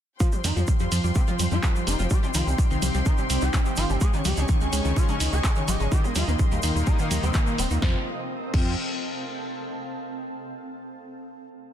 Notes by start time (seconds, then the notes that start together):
0.20 F3 C4 F4 C5 G5 C6, kick, shaker
0.32 F2 F3 G3 G4, shaker
0.44 F2 D#3 G3 D#4 G4, open hi-hat, shaker
0.53 F2 F3 F4 G5, shaker
0.67 G3 G4, kick, low conga, shaker
0.79 F2 F3 G3 G4, shaker
0.92 F2 F3 F4, open hi-hat, shaker
1.04 F2 F3 G3 G4 F5, shaker
1.15 C3 G3 C4 G4, kick, shaker
1.27 F2 F3 F4, shaker
1.39 F2 F3 G3 G4, open hi-hat, low conga, shaker
1.51 F2 F3 G3 F4 G4, shaker
1.63 F2 F3 F4, kick, clap, shaker
1.75 F2 F3 G3 G4, shaker
1.87 F1 D#3 G3 D#4 G4, open hi-hat, shaker
1.99 F1 F2 F3 F4, shaker
2.10 G3 D#4 G4 C6, kick, low conga, shaker
2.23 C3 G3 C4 G4, shaker
2.34 C2 D#3 F3 D#4 F4, open hi-hat, shaker
2.47 C2 C3 G3 C4 G4, shaker
2.58 G3 G4, kick, shaker
2.71 C2 C3 D#3 C4 D#4, shaker
2.82 C2 C3 G3 C4 G4, open hi-hat, low conga, shaker
2.94 C2 C3 G3 C4 G4 D#5, shaker
3.06 D#3 D#4, kick, shaker
3.18 C3 G3 C4 G4, shaker
3.30 C2 C3 G3 C4 G4, open hi-hat, shaker
3.41 C2 D#3 G3 D#4 G4, shaker
3.54 C3 G3 C4 G4, kick, clap, low conga, shaker
3.65 C3 G3 C4 G4, shaker
3.76 G1 D#3 F3 D#4 F4, open hi-hat, shaker
3.90 G1 C3 G3 C4 G4, shaker
4.01 G#3 C#4 G#4 C#5 G#5 C#6, kick, shaker
4.13 C#3 D#3 C#4 D#4, shaker
4.25 C#2 G3 G#3 G4 G#4, open hi-hat, low conga, shaker
4.33 G#4
4.37 C#2 C#3 G#3 C#4 G#4, shaker
4.48 D#3 D#4, kick, shaker
4.61 C#2 C#3 G#3 C#4 G#4, shaker
4.73 C#2 C#3 G#3 C#4 G#4, open hi-hat, shaker
4.85 C#2 C#3 D#3 C#4 D#4, shaker
4.96 F3 G#3 F4 G#4, kick, low conga, shaker
5.09 C#3 G#3 C#4 G#4, shaker
5.20 C#2 C#3 D#3 C#4 D#4, open hi-hat, shaker
5.33 C#2 G#3 G#4, shaker
5.44 C#3 G#3 C#4 G#4, kick, clap, shaker
5.55 C#3 D#3 C#4 D#4, shaker
5.68 G#1 G3 G#3 G4 G#4, open hi-hat, low conga, shaker
5.80 G#1 C#3 G#3 C#4 G#4, shaker
5.92 D#3 G3 C4 D#4 G4 A#4 G5 C6, kick, shaker
6.00 A#4
6.04 A#2 G3 A#3 G4, shaker
6.15 D#2 F3 G3 F4 G4, open hi-hat, shaker
6.28 D#2 A#2 D#3 A#3 D#4, shaker
6.39 G3 G4, kick, low conga, shaker
6.51 D#2 A#2 G3 A#3 G4, shaker
6.63 D#2 A#2 D#3 A#3 D#4, open hi-hat, shaker
6.75 D#2 A#2 G3 A#3 G4, shaker
6.87 D#3 G3 D#4 G4, kick, shaker
6.99 A#2 D#3 A#3 D#4, shaker
7.11 D#2 A#2 G3 A#3 G4, open hi-hat, low conga, shaker
7.23 D#2 C3 G3 C4 G4, shaker
7.34 A#2 D#3 A#3 D#4, kick, clap, shaker
7.47 A#2 G3 A#3 G4, shaker
7.58 D#1 C3 G3 C4 G4, open hi-hat, shaker
7.70 D#2 A#2 D#3 A#3 D#4, shaker
7.82 F2 C3 F3 A3 C4 F4 C5 F5, kick, snare
7.90 A4
7.97 F5
8.04 A5
8.54 F2 C3 F3 C4 F4, kick, crash